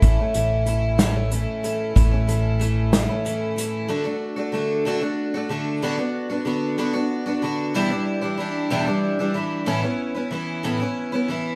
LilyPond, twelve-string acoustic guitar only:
\new Staff \with { instrumentName = "Twelve-string acoustic guitar" } { \time 6/8 \key d \major \tempo 4. = 62 <a, e a cis' e'>16 <a cis' e'>16 <e a cis' e'>8 <e a cis' e'>8 <a, e a cis' e'>16 <a cis' e'>16 <e a cis' e'>8 <e a cis' e'>8 | <a, e a cis' e'>16 <a cis' e'>16 <e a cis' e'>8 <e a cis' e'>8 <a, e a cis' e'>16 <a cis' e'>16 <e a cis' e'>8 <e a cis' e'>8 | <d a d' fis'>16 <a d' fis'>8 <a d' fis'>16 <d a d' fis'>8 <d a d' fis'>16 <a d' fis'>8 <a d' fis'>16 <d a d' fis'>8 | <d b d' fis'>16 <b d' fis'>8 <b d' fis'>16 <d b d' fis'>8 <d b d' fis'>16 <b d' fis'>8 <b d' fis'>16 <d b d' fis'>8 |
<e, b, e g d' e'>16 <e g d' e'>8 <e g d' e'>16 <e g d' e'>8 <e, b, e g d' e'>16 <e g d' e'>8 <e g d' e'>16 <e g d' e'>8 | <a, e b cis' e'>16 <b cis' e'>8 <b cis' e'>16 <e b cis' e'>8 <a, e b cis' e'>16 <b cis' e'>8 <b cis' e'>16 <e b cis' e'>8 | }